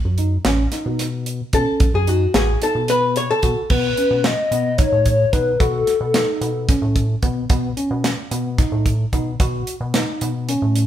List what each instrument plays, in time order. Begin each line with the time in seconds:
0.05 analog synth bass F#2
0.18 tine electric piano D#4, closed hi-hat
0.45 analog synth bass A1, tine electric piano C#4, snare, closed hi-hat
0.72 tine electric piano D#4, snare, closed hi-hat
0.86 analog synth bass B2
0.99 snare, closed hi-hat
1.26 closed hi-hat
1.53 analog synth bass B2, tine electric piano C#4, hollow-body jazz guitar A4, kick, closed hi-hat
1.80 analog synth bass B1, kick, closed hi-hat
1.94 analog synth bass F#2, hollow-body jazz guitar G#4
2.07 tine electric piano D#4, hollow-body jazz guitar F#4, closed hi-hat
2.34 analog synth bass A1, tine electric piano F#4, hollow-body jazz guitar G#4, snare, closed hi-hat
2.62 tine electric piano D#4, hollow-body jazz guitar A4, closed hi-hat
2.75 analog synth bass B2
2.88 tine electric piano B3, hollow-body jazz guitar B4, closed hi-hat
3.16 hollow-body jazz guitar C#5, closed hi-hat
3.31 hollow-body jazz guitar A4
3.43 analog synth bass B2, tine electric piano F#4, kick, closed hi-hat
3.70 analog synth bass B2, tine electric piano B3, analog synth lead B4, kick, crash
3.97 tine electric piano C#4, closed hi-hat
4.11 analog synth bass B2
4.24 analog synth lead D#5, snare, closed hi-hat
4.51 analog synth bass B2, tine electric piano B3, closed hi-hat
4.78 tine electric piano D#4, analog synth lead C#5, kick, closed hi-hat
4.92 analog synth bass A2
5.06 kick, closed hi-hat
5.32 analog synth bass B2, tine electric piano D#4, analog synth lead B4, kick, closed hi-hat
5.59 analog synth bass B2, tine electric piano F#4, analog synth lead A4, kick, closed hi-hat
5.87 snare, closed hi-hat
6.01 analog synth bass B2
6.14 tine electric piano D#4, snare, closed hi-hat
6.41 analog synth bass B2, closed hi-hat
6.69 tine electric piano C#4, kick, snare, closed hi-hat
6.82 analog synth bass A2
6.96 kick, closed hi-hat
7.23 analog synth bass B2, tine electric piano B3, kick, closed hi-hat
7.50 analog synth bass B2, tine electric piano B3, kick, closed hi-hat
7.77 tine electric piano C#4, closed hi-hat
7.91 analog synth bass B2
8.04 snare, closed hi-hat
8.31 analog synth bass B2, tine electric piano B3, closed hi-hat
8.58 tine electric piano D#4, kick, snare, closed hi-hat
8.72 analog synth bass A2
8.86 kick, closed hi-hat
9.13 analog synth bass B2, tine electric piano D#4, kick, closed hi-hat
9.40 analog synth bass B2, tine electric piano F#4, kick, closed hi-hat
9.67 closed hi-hat
9.81 analog synth bass B2
9.94 tine electric piano D#4, snare, closed hi-hat
10.21 analog synth bass B2, closed hi-hat
10.49 tine electric piano C#4, closed hi-hat
10.62 analog synth bass A2
10.76 closed hi-hat